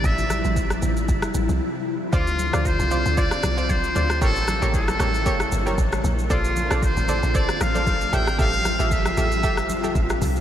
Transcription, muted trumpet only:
X:1
M:4/4
L:1/8
Q:"Swing 16ths" 1/4=115
K:F
V:1 name="Muted trumpet"
e2 z6 | F2 c2 d2 c2 | A2 A4- A z | F2 c2 d f2 g |
f2 e4 z2 |]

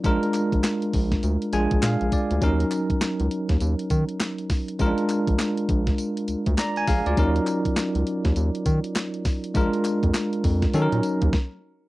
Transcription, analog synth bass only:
X:1
M:4/4
L:1/16
Q:"Swing 16ths" 1/4=101
K:Ebm
V:1 name="Analog synth bass" clef=bass
B,,, z2 B,,, z2 B,,,2 =D,, z B,,, B,,, B,, B,,, z D,, | E,,2 z D,, z D,, z E,, E,, z E, z4 z | B,,, z2 B,,, z2 B,,,2 z2 =D,, D,, z2 B,,, D,, | E,,2 z D,, z D,, z E,, E,, z E, z4 z |
B,,, z2 F,, z2 F,,2 E, B,, z E,, z4 |]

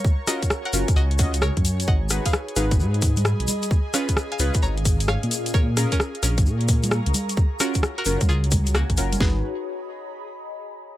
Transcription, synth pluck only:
X:1
M:4/4
L:1/16
Q:"Swing 16ths" 1/4=131
K:G#dor
V:1 name="Synth pluck"
z2 [Fd]2 z [Af]2 z [Fd]2 z2 [Ac]2 z2 | [df]2 z [Ge]2 z [Ge]2 z8 | z2 [ce]2 z [eg]2 z [ca]2 z2 [ce]2 z2 | [Ac]2 z [CA]2 z [CA]2 z8 |
z2 [FA]2 z [FA]2 z [EG]2 z2 [A,F]2 z2 | G2 z12 z2 |]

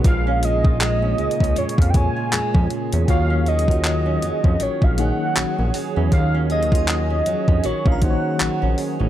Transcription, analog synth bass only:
X:1
M:4/4
L:1/16
Q:"Swing 16ths" 1/4=79
K:Ebm
V:1 name="Analog synth bass" clef=bass
B,,,6 D,, D,, F,, F,,2 z F,, F,, z _F,, | E,,6 F,, F,, B,,, B,,,2 z B,,, B,,, z _F,, | E,,6 F,, F,, B,,, B,,,2 z B,,, B,,, z =A,,, |]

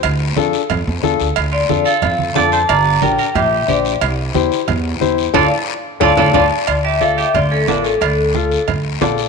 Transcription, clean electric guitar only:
X:1
M:4/4
L:1/16
Q:1/4=180
K:Dm
V:1 name="Clean electric guitar"
z16 | z2 F4 A6 d2 c2 | d4 B2 B2 G4 G3 z | z16 |
[FAd]2 z6 [FAd]2 [FAd]2 [FAd]2 z2 | F2 G2 A2 G2 F2 ^C2 D2 C2 | D8 z8 |]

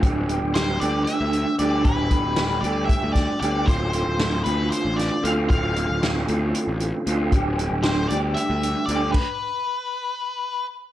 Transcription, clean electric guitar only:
X:1
M:7/8
L:1/8
Q:1/4=115
K:Gmix
V:1 name="Clean electric guitar"
[G,,D,G,DG] [G,DG] [G,,D,G,DG] [G,DG]3 [D,G,DG] | [G,,D,G,DG] [G,DG] [G,,D,G,DG] [G,DG]3 [D,G,DG] | [D,,A,,D,A,CF] [D,A,CF] [D,,A,,D,A,CF] [D,A,CF]3 [D,A,CF] | [D,,A,,D,A,CF] [D,A,CF] [D,,A,,D,A,CF] [D,A,CF]3 [D,A,CF] |
[G,,D,G,DG] [G,DG] [G,,D,G,DG] [G,DG]3 [D,G,DG] | z6 z |]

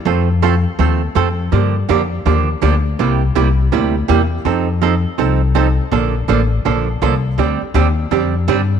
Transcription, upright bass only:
X:1
M:4/4
L:1/8
Q:"Swing" 1/4=164
K:Fmix
V:1 name="Upright bass" clef=bass
F,,4 E,,2 F,,2 | G,,2 F,,2 E,,2 D,,2 | C,,2 C,,2 D,,2 =E,,2 | F,,4 C,,4 |
B,,,2 A,,,2 B,,,2 C,,2 | D,, z E,,2 F,,2 G,,2 |]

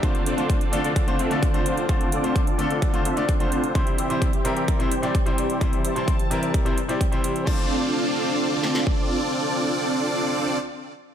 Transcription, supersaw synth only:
X:1
M:4/4
L:1/16
Q:1/4=129
K:Dm
V:1 name="Supersaw synth"
[CDFAd]2 [CDFAd]4- [CDFAd] [CDFAd] [CDFAd]2 [CDFAe]2 [CDFAc]4 | [CDFAd]2 [CDFAd]4- [CDFAd] [CDFAd] [CDFAd]2 [CDFAe]2 [CDFAc]4 | [Gce]2 [Gce]4- [Gce] [Gce] [Gce]2 [Gcg]2 [Gcd]4 | [Gce]2 [Gce]4- [Gce] [Gce] [Gce]2 z [Gcg] [Gcg]2 [Gcg]2 |
[CDFAd]16- | [CDFAd]16 |]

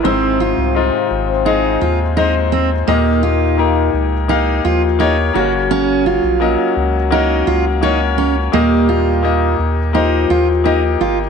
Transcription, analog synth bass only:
X:1
M:4/4
L:1/16
Q:1/4=85
K:Ab
V:1 name="Analog synth bass" clef=bass
A,,,3 C,,2 z A,,,4 E,,6 | E,,6 D,,4 E,,4 _G,,,2- | _G,,,3 B,,,2 z D,,4 D,,6 | E,,6 E,,4 E,,4 G,,,2 |]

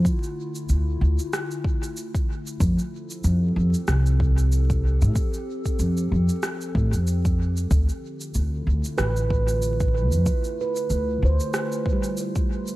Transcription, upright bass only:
X:1
M:4/4
L:1/16
Q:"Swing 16ths" 1/4=94
K:Ddor
V:1 name="Upright bass" clef=bass
z4 D,,2 D,, z8 z | F,, z3 F,,2 F,, z C,,6- C,, A,, | z4 F,,2 F,, z3 A,, F,,4- F,, | D,, z3 D,,2 D,, z A,,,6- A,,, F,, |
z4 D,,2 D,, z8 z |]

